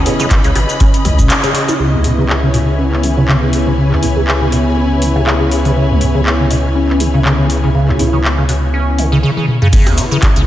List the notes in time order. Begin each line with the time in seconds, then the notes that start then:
Already playing: C#3 C#4 E4 B4 D#5 B5
0.06 C#3 B3 C#4 E4 G#4, open hi-hat
0.20 C#3, cross-stick, closed hi-hat, shaker
0.31 kick, clap, closed hi-hat, shaker
0.44 C#2 C#3, closed hi-hat, shaker
0.55 G#1 B2, cross-stick, open hi-hat
0.69 closed hi-hat, shaker
0.80 C#4, kick, cross-stick, closed hi-hat, shaker
0.94 closed hi-hat, shaker
1.05 C#2, cross-stick, open hi-hat
1.19 C#3, kick, closed hi-hat, shaker
1.30 C#4, clap, closed hi-hat, shaker
1.44 C#3, cross-stick, closed hi-hat, shaker
1.55 open hi-hat
1.68 E4, cross-stick, open hi-hat, shaker
1.79 C#2 C#3 B3 E4
1.93 C#2
2.04 C#3 B4, open hi-hat
2.18 C#3 G#5
2.29 clap
2.43 C#3 C#5
2.54 B2, open hi-hat
2.79 C#4
2.93 clap
3.03 C#3 B3 C#4 E4 G#4, open hi-hat
3.17 C#3
3.28 C#3, clap
3.42 C#3
3.53 open hi-hat
3.67 C#3
3.78 C#3
3.91 C#2, clap
4.03 C#3 B3 C#4 E4 G#4, open hi-hat
4.16 C#3
4.28 clap
4.41 C#3
4.52 B2, open hi-hat
4.77 C#4
5.02 C#3, open hi-hat
5.15 C#3
5.27 C#3, clap
5.40 C#3
5.51 open hi-hat
5.65 C#3, open hi-hat
5.76 C#3
5.90 C#2
6.01 C#3, open hi-hat
6.15 C#3
6.26 clap
6.39 C#3
6.50 B2, open hi-hat
6.75 C#4
6.89 clap
7.00 C#3 B3 C#4 E4 G#4, open hi-hat
7.14 C#3
7.25 C#3, clap
7.39 C#3
7.50 open hi-hat
7.63 C#3
7.75 C#3
7.88 C#2, clap
7.99 C#3 B3 C#4 E4 G#4, open hi-hat
8.13 C#3
8.24 clap
8.38 C#3
8.49 B2, open hi-hat
8.74 C#4
8.98 C#3, open hi-hat
9.12 C#3
9.23 C#3
9.37 C#3, high tom
9.48 mid tom
9.62 C#3, mid tom
9.73 C#3 B3 E4, kick, closed hi-hat, crash, shaker
9.87 C#2, cross-stick, closed hi-hat, shaker
9.98 C#3, open hi-hat, shaker
10.11 C#3, shaker
10.22 kick, cross-stick, clap, closed hi-hat, shaker
10.36 C#2 C#3, closed hi-hat, shaker